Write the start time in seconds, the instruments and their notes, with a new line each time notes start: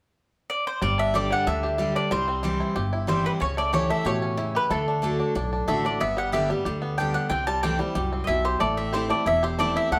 0.50 mandolin D5
0.67 mandolin C5
0.82 upright bass G1, steel-string acoustic guitar G2, five-string banjo G3, mandolin D5
0.98 five-string banjo D4, mandolin E5
1.14 steel-string acoustic guitar D3 G3 D4 G4, five-string banjo G4, mandolin D5
1.31 five-string banjo G3, mandolin F#5
1.47 upright bass D2, steel-string acoustic guitar D3, five-string banjo D4, mandolin E5
1.63 five-string banjo G4
1.78 steel-string acoustic guitar D3 G3 D4 G4, five-string banjo G3
1.95 five-string banjo D4, mandolin D5
2.11 upright bass C2, steel-string acoustic guitar C3, five-string banjo G3, mandolin C5
2.28 five-string banjo C4
2.43 steel-string acoustic guitar E3 G3 C4 E4, five-string banjo G4
2.60 five-string banjo E4
2.76 upright bass G1, steel-string acoustic guitar G2, five-string banjo G4
2.93 five-string banjo E4
3.07 steel-string acoustic guitar E3 G3 C4 E4, five-string banjo G3, mandolin C5
3.24 five-string banjo C4, mandolin B4
3.40 upright bass C#2, steel-string acoustic guitar C#3, five-string banjo C#4, mandolin C#5
3.57 five-string banjo A3, mandolin D5
3.73 steel-string acoustic guitar E3 A3 C#4 E4, five-string banjo G4, mandolin C#5
3.90 five-string banjo A3, mandolin E5
4.05 upright bass A2, steel-string acoustic guitar B2, five-string banjo G4, mandolin C#5
4.22 five-string banjo C#4
4.37 steel-string acoustic guitar C#3, five-string banjo E4
4.55 five-string banjo G4, mandolin B4
4.70 upright bass D2, steel-string acoustic guitar D3, five-string banjo A3, mandolin A4
4.88 five-string banjo D4
5.02 steel-string acoustic guitar D3 A3 D4 F#4, five-string banjo D4
5.20 five-string banjo D4
5.35 upright bass B1, steel-string acoustic guitar A2, five-string banjo D4
5.53 five-string banjo D4
5.68 upright bass A1, steel-string acoustic guitar D3 A3 D4 F#4, five-string banjo A3, mandolin E5
5.85 five-string banjo D4, steel-string acoustic guitar D4 F#4, mandolin D5
6.00 upright bass G1, steel-string acoustic guitar G2, five-string banjo B3, mandolin E5
6.17 five-string banjo G3, mandolin F#5
6.32 steel-string acoustic guitar D3 G3 B3 G4, five-string banjo G4, mandolin E5
6.50 five-string banjo G3, steel-string acoustic guitar B3 G4
6.65 upright bass D2, steel-string acoustic guitar D3, five-string banjo G4
6.82 five-string banjo B3
6.98 steel-string acoustic guitar D3 G3 B3 G4, five-string banjo D4, mandolin G5
7.14 five-string banjo G4, mandolin F#5
7.30 upright bass C2, steel-string acoustic guitar C3, five-string banjo C4, mandolin G5
7.47 five-string banjo G3, mandolin A5
7.63 steel-string acoustic guitar E3 A3 C4 E4, five-string banjo G4, mandolin G5
7.79 five-string banjo G3, steel-string acoustic guitar C4 E4
7.95 upright bass C2, steel-string acoustic guitar F#2, five-string banjo G4
8.12 five-string banjo C4
8.24 mandolin D#5 E5
8.28 upright bass B1, steel-string acoustic guitar B2, five-string banjo E4
8.45 five-string banjo G4, mandolin C5
8.60 upright bass A1, steel-string acoustic guitar A2, five-string banjo A3, mandolin D5
8.77 five-string banjo C4, mandolin E5
8.93 steel-string acoustic guitar E3 A3 C4 E4, five-string banjo G4, mandolin C5
9.10 five-string banjo A3, steel-string acoustic guitar C4 E4, mandolin D5
9.26 upright bass E1, steel-string acoustic guitar E2, five-string banjo E4, mandolin E5
9.43 five-string banjo G4, mandolin C5
9.59 steel-string acoustic guitar E3 A3 C4 E4, five-string banjo A3, mandolin D5
9.76 five-string banjo E4, mandolin E5
9.92 upright bass D2, steel-string acoustic guitar D3, five-string banjo A3, mandolin F#5